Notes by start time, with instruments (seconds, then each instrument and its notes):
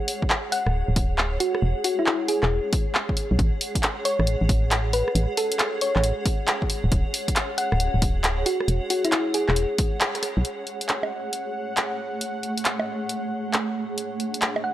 Already playing: ambient pad G#4 C#5 F#5
0.08 open hi-hat
0.22 kick
0.30 clap
0.52 synth pluck F#5, open hi-hat
0.67 fm bass D1, cross-stick
0.88 fm bass D1
0.96 kick, open hi-hat
1.18 clap
1.40 synth pluck F#4, ambient pad G#4, open hi-hat
1.55 cross-stick
1.62 fm bass E1, ambient pad C#5
1.84 synth pluck F#4, open hi-hat
1.99 synth pluck E4
2.06 synth pluck E4, clap
2.28 synth pluck G#4, ambient pad F#5, open hi-hat
2.43 fm bass E1, synth pluck G#4, cross-stick, clap
2.73 kick, open hi-hat
2.95 clap
3.09 kick
3.17 open hi-hat
3.31 fm bass B1
3.39 fm bass A1, kick, closed hi-hat
3.61 open hi-hat
3.75 kick, closed hi-hat
3.83 clap, closed hi-hat
4.05 synth pluck C#5, open hi-hat
4.19 fm bass A1, cross-stick
4.27 closed hi-hat
4.41 fm bass A1
4.49 kick, open hi-hat
4.71 clap, closed hi-hat
4.93 synth pluck B4, open hi-hat
5.08 cross-stick
5.15 fm bass A1, closed hi-hat
5.37 synth pluck A4, open hi-hat
5.52 closed hi-hat
5.59 clap, closed hi-hat
5.81 synth pluck C#5, open hi-hat
5.96 fm bass A1, synth pluck C#5, cross-stick, clap
6.04 closed hi-hat
6.26 kick, open hi-hat
6.48 clap, closed hi-hat
6.62 kick
6.70 open hi-hat
6.84 fm bass D1
6.92 fm bass D1, kick, closed hi-hat
7.14 open hi-hat
7.28 kick, closed hi-hat
7.36 clap, closed hi-hat
7.58 synth pluck F#5, open hi-hat
7.72 fm bass D1, cross-stick
7.80 closed hi-hat
7.94 fm bass D1
8.02 kick, open hi-hat
8.24 clap, closed hi-hat
8.46 synth pluck F#4, open hi-hat
8.60 cross-stick
8.68 fm bass E1, closed hi-hat
8.90 synth pluck F#4, open hi-hat
9.05 synth pluck E4, closed hi-hat
9.12 synth pluck E4, clap, closed hi-hat
9.34 synth pluck G#4, open hi-hat
9.49 fm bass E1, synth pluck G#4, cross-stick, clap
9.56 closed hi-hat
9.78 kick, open hi-hat
10.01 clap, closed hi-hat
10.15 cross-stick, closed hi-hat
10.23 cross-stick, open hi-hat
10.37 fm bass B1
10.45 ambient pad A3, analog synth pad F#5, closed hi-hat
10.67 closed hi-hat
10.81 closed hi-hat
10.89 clap, closed hi-hat
11.03 high bongo
11.33 closed hi-hat
11.77 clap, closed hi-hat
12.21 closed hi-hat
12.43 closed hi-hat
12.58 closed hi-hat
12.65 clap, closed hi-hat
12.80 high bongo
13.09 closed hi-hat
13.54 clap, closed hi-hat
13.75 ambient pad D4
13.98 closed hi-hat
14.20 closed hi-hat
14.34 closed hi-hat
14.42 clap, closed hi-hat
14.56 high bongo
14.64 synth pluck F#5